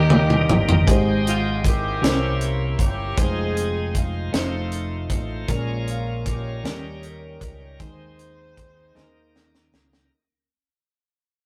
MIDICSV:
0, 0, Header, 1, 6, 480
1, 0, Start_track
1, 0, Key_signature, -4, "major"
1, 0, Tempo, 770218
1, 542, Time_signature, 6, 3, 24, 8
1, 7136, End_track
2, 0, Start_track
2, 0, Title_t, "Saxophone section"
2, 0, Program_c, 0, 65
2, 0, Note_on_c, 0, 58, 76
2, 0, Note_on_c, 0, 63, 97
2, 0, Note_on_c, 0, 67, 110
2, 343, Note_off_c, 0, 67, 0
2, 524, Note_off_c, 0, 58, 0
2, 524, Note_off_c, 0, 63, 0
2, 799, Note_on_c, 0, 65, 88
2, 1013, Note_off_c, 0, 65, 0
2, 1033, Note_on_c, 0, 67, 88
2, 1037, Note_on_c, 0, 58, 69
2, 1037, Note_on_c, 0, 64, 71
2, 1506, Note_off_c, 0, 67, 0
2, 1512, Note_on_c, 0, 70, 75
2, 1722, Note_off_c, 0, 58, 0
2, 1722, Note_off_c, 0, 64, 0
2, 1746, Note_off_c, 0, 70, 0
2, 1751, Note_on_c, 0, 67, 80
2, 1985, Note_off_c, 0, 67, 0
2, 1993, Note_on_c, 0, 68, 99
2, 2000, Note_on_c, 0, 63, 77
2, 2001, Note_on_c, 0, 60, 73
2, 2466, Note_off_c, 0, 68, 0
2, 2470, Note_on_c, 0, 65, 75
2, 2684, Note_off_c, 0, 63, 0
2, 2685, Note_off_c, 0, 60, 0
2, 2688, Note_off_c, 0, 65, 0
2, 2712, Note_on_c, 0, 65, 70
2, 2718, Note_on_c, 0, 57, 53
2, 2723, Note_on_c, 0, 60, 49
2, 3220, Note_off_c, 0, 65, 0
2, 3404, Note_off_c, 0, 57, 0
2, 3406, Note_off_c, 0, 60, 0
2, 3675, Note_on_c, 0, 65, 74
2, 3891, Note_off_c, 0, 65, 0
2, 3915, Note_on_c, 0, 67, 88
2, 3920, Note_on_c, 0, 58, 55
2, 3921, Note_on_c, 0, 61, 53
2, 4363, Note_off_c, 0, 67, 0
2, 4386, Note_off_c, 0, 61, 0
2, 4391, Note_on_c, 0, 70, 78
2, 4393, Note_on_c, 0, 61, 57
2, 4393, Note_on_c, 0, 67, 57
2, 4605, Note_off_c, 0, 58, 0
2, 4841, Note_off_c, 0, 70, 0
2, 4842, Note_off_c, 0, 61, 0
2, 4842, Note_off_c, 0, 67, 0
2, 4875, Note_on_c, 0, 72, 104
2, 4876, Note_on_c, 0, 63, 66
2, 4879, Note_on_c, 0, 68, 71
2, 6045, Note_off_c, 0, 63, 0
2, 6047, Note_off_c, 0, 68, 0
2, 6070, Note_off_c, 0, 72, 0
2, 7136, End_track
3, 0, Start_track
3, 0, Title_t, "Grand piano"
3, 0, Program_c, 1, 0
3, 0, Control_c, 1, 64, 127
3, 0, Note_on_c, 1, 51, 68
3, 0, Note_on_c, 1, 58, 80
3, 0, Note_on_c, 1, 63, 61
3, 0, Note_on_c, 1, 67, 77
3, 519, Note_off_c, 1, 51, 0
3, 535, Note_off_c, 1, 67, 0
3, 537, Note_on_c, 1, 56, 55
3, 540, Note_off_c, 1, 58, 0
3, 540, Note_on_c, 1, 75, 59
3, 542, Note_on_c, 1, 44, 62
3, 543, Note_off_c, 1, 63, 0
3, 545, Note_on_c, 1, 67, 57
3, 547, Note_on_c, 1, 72, 66
3, 550, Control_c, 1, 64, 0
3, 654, Control_c, 1, 64, 127
3, 1235, Note_off_c, 1, 44, 0
3, 1256, Note_off_c, 1, 72, 0
3, 1257, Note_on_c, 1, 58, 57
3, 1258, Note_off_c, 1, 56, 0
3, 1259, Note_off_c, 1, 75, 0
3, 1259, Note_on_c, 1, 61, 52
3, 1260, Note_on_c, 1, 48, 62
3, 1261, Note_off_c, 1, 67, 0
3, 1263, Note_on_c, 1, 64, 58
3, 1265, Note_on_c, 1, 72, 62
3, 1267, Control_c, 1, 64, 0
3, 1392, Control_c, 1, 64, 127
3, 1954, Note_off_c, 1, 48, 0
3, 1977, Note_off_c, 1, 58, 0
3, 1978, Note_on_c, 1, 56, 54
3, 1979, Note_off_c, 1, 61, 0
3, 1979, Note_off_c, 1, 72, 0
3, 1980, Note_off_c, 1, 64, 0
3, 1980, Note_on_c, 1, 63, 48
3, 1984, Note_on_c, 1, 65, 45
3, 1987, Control_c, 1, 64, 0
3, 1988, Note_on_c, 1, 72, 57
3, 2084, Control_c, 1, 64, 127
3, 2685, Note_off_c, 1, 63, 0
3, 2686, Note_off_c, 1, 65, 0
3, 2691, Note_on_c, 1, 57, 60
3, 2693, Note_off_c, 1, 72, 0
3, 2694, Note_on_c, 1, 63, 51
3, 2696, Note_on_c, 1, 65, 53
3, 2698, Note_off_c, 1, 56, 0
3, 2702, Note_on_c, 1, 72, 70
3, 2708, Control_c, 1, 64, 0
3, 2822, Control_c, 1, 64, 127
3, 3413, Note_off_c, 1, 65, 0
3, 3415, Note_off_c, 1, 57, 0
3, 3415, Note_on_c, 1, 56, 59
3, 3416, Note_on_c, 1, 61, 57
3, 3417, Note_off_c, 1, 63, 0
3, 3419, Note_on_c, 1, 46, 67
3, 3421, Note_off_c, 1, 72, 0
3, 3422, Note_on_c, 1, 65, 64
3, 3423, Note_on_c, 1, 70, 66
3, 3427, Control_c, 1, 64, 0
3, 3539, Control_c, 1, 64, 127
3, 4115, Note_off_c, 1, 46, 0
3, 4130, Note_off_c, 1, 61, 0
3, 4136, Note_off_c, 1, 70, 0
3, 4136, Note_on_c, 1, 55, 62
3, 4137, Note_off_c, 1, 56, 0
3, 4139, Note_on_c, 1, 51, 55
3, 4140, Note_on_c, 1, 61, 57
3, 4141, Note_off_c, 1, 65, 0
3, 4142, Note_on_c, 1, 63, 55
3, 4146, Note_on_c, 1, 70, 66
3, 4147, Control_c, 1, 64, 0
3, 4275, Control_c, 1, 64, 127
3, 4835, Note_off_c, 1, 51, 0
3, 4853, Note_off_c, 1, 63, 0
3, 4856, Note_on_c, 1, 56, 53
3, 4859, Note_off_c, 1, 55, 0
3, 4860, Note_off_c, 1, 61, 0
3, 4861, Note_on_c, 1, 60, 48
3, 4862, Note_on_c, 1, 51, 52
3, 4863, Note_off_c, 1, 70, 0
3, 4863, Note_on_c, 1, 63, 51
3, 4866, Note_on_c, 1, 72, 52
3, 4868, Control_c, 1, 64, 0
3, 4975, Control_c, 1, 64, 127
3, 5557, Note_off_c, 1, 51, 0
3, 5572, Note_off_c, 1, 63, 0
3, 5576, Note_on_c, 1, 58, 65
3, 5577, Note_on_c, 1, 51, 61
3, 5580, Note_off_c, 1, 56, 0
3, 5581, Note_on_c, 1, 63, 60
3, 5582, Note_off_c, 1, 60, 0
3, 5584, Note_off_c, 1, 72, 0
3, 5584, Note_on_c, 1, 68, 62
3, 5590, Control_c, 1, 64, 0
3, 5624, Note_off_c, 1, 68, 0
3, 5626, Note_on_c, 1, 70, 74
3, 5684, Control_c, 1, 64, 127
3, 6276, Note_off_c, 1, 51, 0
3, 6300, Note_off_c, 1, 58, 0
3, 6303, Note_off_c, 1, 63, 0
3, 6311, Control_c, 1, 64, 0
3, 6325, Note_off_c, 1, 70, 0
3, 7136, End_track
4, 0, Start_track
4, 0, Title_t, "Tonewheel organ"
4, 0, Program_c, 2, 16
4, 0, Note_on_c, 2, 55, 70
4, 0, Note_on_c, 2, 58, 58
4, 0, Note_on_c, 2, 63, 78
4, 540, Note_on_c, 2, 75, 65
4, 541, Note_off_c, 2, 55, 0
4, 541, Note_off_c, 2, 63, 0
4, 541, Note_on_c, 2, 56, 68
4, 541, Note_on_c, 2, 67, 61
4, 541, Note_on_c, 2, 70, 63
4, 544, Note_off_c, 2, 58, 0
4, 582, Note_off_c, 2, 70, 0
4, 583, Note_on_c, 2, 72, 80
4, 1252, Note_off_c, 2, 72, 0
4, 1258, Note_on_c, 2, 61, 48
4, 1259, Note_off_c, 2, 75, 0
4, 1259, Note_on_c, 2, 72, 60
4, 1260, Note_off_c, 2, 56, 0
4, 1260, Note_off_c, 2, 67, 0
4, 1260, Note_on_c, 2, 58, 57
4, 1261, Note_on_c, 2, 64, 52
4, 1971, Note_off_c, 2, 72, 0
4, 1975, Note_on_c, 2, 65, 59
4, 1976, Note_on_c, 2, 56, 62
4, 1977, Note_on_c, 2, 63, 49
4, 1978, Note_off_c, 2, 61, 0
4, 1978, Note_on_c, 2, 72, 66
4, 1979, Note_off_c, 2, 58, 0
4, 1979, Note_off_c, 2, 64, 0
4, 2690, Note_off_c, 2, 63, 0
4, 2691, Note_off_c, 2, 65, 0
4, 2692, Note_off_c, 2, 72, 0
4, 2697, Note_off_c, 2, 56, 0
4, 2697, Note_on_c, 2, 57, 59
4, 2698, Note_on_c, 2, 63, 56
4, 2698, Note_on_c, 2, 65, 44
4, 2699, Note_on_c, 2, 72, 65
4, 3409, Note_off_c, 2, 65, 0
4, 3416, Note_on_c, 2, 56, 70
4, 3416, Note_on_c, 2, 61, 60
4, 3417, Note_on_c, 2, 65, 70
4, 3417, Note_on_c, 2, 69, 62
4, 3418, Note_off_c, 2, 57, 0
4, 3418, Note_off_c, 2, 63, 0
4, 3419, Note_off_c, 2, 72, 0
4, 3458, Note_off_c, 2, 69, 0
4, 3459, Note_on_c, 2, 70, 76
4, 4137, Note_off_c, 2, 61, 0
4, 4138, Note_off_c, 2, 56, 0
4, 4138, Note_off_c, 2, 65, 0
4, 4143, Note_on_c, 2, 69, 52
4, 4144, Note_on_c, 2, 55, 52
4, 4144, Note_on_c, 2, 61, 55
4, 4145, Note_on_c, 2, 63, 47
4, 4160, Note_off_c, 2, 70, 0
4, 4182, Note_off_c, 2, 69, 0
4, 4184, Note_on_c, 2, 70, 54
4, 4855, Note_off_c, 2, 63, 0
4, 4861, Note_on_c, 2, 60, 51
4, 4862, Note_on_c, 2, 63, 54
4, 4862, Note_on_c, 2, 72, 66
4, 4863, Note_off_c, 2, 55, 0
4, 4863, Note_off_c, 2, 61, 0
4, 4864, Note_on_c, 2, 56, 63
4, 4883, Note_off_c, 2, 70, 0
4, 5569, Note_off_c, 2, 63, 0
4, 5577, Note_on_c, 2, 63, 53
4, 5577, Note_on_c, 2, 69, 53
4, 5579, Note_on_c, 2, 51, 61
4, 5582, Note_off_c, 2, 60, 0
4, 5582, Note_off_c, 2, 72, 0
4, 5582, Note_on_c, 2, 58, 56
4, 5583, Note_off_c, 2, 56, 0
4, 5620, Note_off_c, 2, 69, 0
4, 5620, Note_on_c, 2, 70, 64
4, 6300, Note_off_c, 2, 63, 0
4, 6302, Note_off_c, 2, 51, 0
4, 6303, Note_off_c, 2, 58, 0
4, 6322, Note_off_c, 2, 70, 0
4, 7136, End_track
5, 0, Start_track
5, 0, Title_t, "Fingered electric bass"
5, 0, Program_c, 3, 33
5, 0, Note_on_c, 3, 39, 110
5, 277, Note_off_c, 3, 39, 0
5, 299, Note_on_c, 3, 31, 76
5, 520, Note_off_c, 3, 31, 0
5, 544, Note_on_c, 3, 32, 82
5, 1236, Note_off_c, 3, 32, 0
5, 1256, Note_on_c, 3, 36, 88
5, 1712, Note_off_c, 3, 36, 0
5, 1737, Note_on_c, 3, 31, 77
5, 1958, Note_off_c, 3, 31, 0
5, 1977, Note_on_c, 3, 29, 93
5, 2673, Note_off_c, 3, 29, 0
5, 2698, Note_on_c, 3, 29, 97
5, 3153, Note_off_c, 3, 29, 0
5, 3175, Note_on_c, 3, 33, 79
5, 3398, Note_off_c, 3, 33, 0
5, 3419, Note_on_c, 3, 34, 88
5, 4114, Note_off_c, 3, 34, 0
5, 4134, Note_on_c, 3, 39, 92
5, 4592, Note_off_c, 3, 39, 0
5, 4619, Note_on_c, 3, 37, 75
5, 4840, Note_off_c, 3, 37, 0
5, 4861, Note_on_c, 3, 39, 84
5, 5557, Note_off_c, 3, 39, 0
5, 5583, Note_on_c, 3, 39, 86
5, 6038, Note_off_c, 3, 39, 0
5, 6057, Note_on_c, 3, 37, 73
5, 6280, Note_off_c, 3, 37, 0
5, 7136, End_track
6, 0, Start_track
6, 0, Title_t, "Drums"
6, 63, Note_on_c, 9, 48, 84
6, 126, Note_off_c, 9, 48, 0
6, 188, Note_on_c, 9, 47, 75
6, 250, Note_off_c, 9, 47, 0
6, 308, Note_on_c, 9, 45, 117
6, 371, Note_off_c, 9, 45, 0
6, 428, Note_on_c, 9, 43, 101
6, 490, Note_off_c, 9, 43, 0
6, 545, Note_on_c, 9, 36, 90
6, 547, Note_on_c, 9, 42, 73
6, 608, Note_off_c, 9, 36, 0
6, 610, Note_off_c, 9, 42, 0
6, 791, Note_on_c, 9, 42, 46
6, 854, Note_off_c, 9, 42, 0
6, 1025, Note_on_c, 9, 36, 73
6, 1029, Note_on_c, 9, 42, 59
6, 1087, Note_off_c, 9, 36, 0
6, 1091, Note_off_c, 9, 42, 0
6, 1270, Note_on_c, 9, 42, 73
6, 1273, Note_on_c, 9, 38, 90
6, 1333, Note_off_c, 9, 42, 0
6, 1335, Note_off_c, 9, 38, 0
6, 1501, Note_on_c, 9, 42, 39
6, 1563, Note_off_c, 9, 42, 0
6, 1738, Note_on_c, 9, 36, 79
6, 1742, Note_on_c, 9, 42, 62
6, 1801, Note_off_c, 9, 36, 0
6, 1805, Note_off_c, 9, 42, 0
6, 1977, Note_on_c, 9, 42, 79
6, 1979, Note_on_c, 9, 36, 102
6, 2039, Note_off_c, 9, 42, 0
6, 2041, Note_off_c, 9, 36, 0
6, 2223, Note_on_c, 9, 42, 52
6, 2285, Note_off_c, 9, 42, 0
6, 2460, Note_on_c, 9, 36, 68
6, 2460, Note_on_c, 9, 42, 67
6, 2523, Note_off_c, 9, 36, 0
6, 2523, Note_off_c, 9, 42, 0
6, 2702, Note_on_c, 9, 42, 68
6, 2705, Note_on_c, 9, 38, 91
6, 2764, Note_off_c, 9, 42, 0
6, 2767, Note_off_c, 9, 38, 0
6, 2940, Note_on_c, 9, 42, 46
6, 3002, Note_off_c, 9, 42, 0
6, 3177, Note_on_c, 9, 36, 76
6, 3177, Note_on_c, 9, 42, 63
6, 3239, Note_off_c, 9, 36, 0
6, 3240, Note_off_c, 9, 42, 0
6, 3416, Note_on_c, 9, 42, 77
6, 3418, Note_on_c, 9, 36, 86
6, 3478, Note_off_c, 9, 42, 0
6, 3481, Note_off_c, 9, 36, 0
6, 3661, Note_on_c, 9, 42, 48
6, 3723, Note_off_c, 9, 42, 0
6, 3900, Note_on_c, 9, 42, 58
6, 3901, Note_on_c, 9, 36, 74
6, 3962, Note_off_c, 9, 42, 0
6, 3963, Note_off_c, 9, 36, 0
6, 4145, Note_on_c, 9, 42, 67
6, 4148, Note_on_c, 9, 38, 93
6, 4207, Note_off_c, 9, 42, 0
6, 4210, Note_off_c, 9, 38, 0
6, 4380, Note_on_c, 9, 42, 39
6, 4443, Note_off_c, 9, 42, 0
6, 4619, Note_on_c, 9, 36, 73
6, 4621, Note_on_c, 9, 42, 67
6, 4682, Note_off_c, 9, 36, 0
6, 4683, Note_off_c, 9, 42, 0
6, 4859, Note_on_c, 9, 42, 69
6, 4861, Note_on_c, 9, 36, 97
6, 4922, Note_off_c, 9, 42, 0
6, 4923, Note_off_c, 9, 36, 0
6, 5103, Note_on_c, 9, 42, 47
6, 5166, Note_off_c, 9, 42, 0
6, 5343, Note_on_c, 9, 36, 68
6, 5344, Note_on_c, 9, 42, 62
6, 5405, Note_off_c, 9, 36, 0
6, 5406, Note_off_c, 9, 42, 0
6, 5593, Note_on_c, 9, 38, 42
6, 5655, Note_off_c, 9, 38, 0
6, 5832, Note_on_c, 9, 38, 63
6, 5895, Note_off_c, 9, 38, 0
6, 5950, Note_on_c, 9, 38, 55
6, 6012, Note_off_c, 9, 38, 0
6, 6068, Note_on_c, 9, 38, 80
6, 6131, Note_off_c, 9, 38, 0
6, 6190, Note_on_c, 9, 38, 75
6, 6253, Note_off_c, 9, 38, 0
6, 7136, End_track
0, 0, End_of_file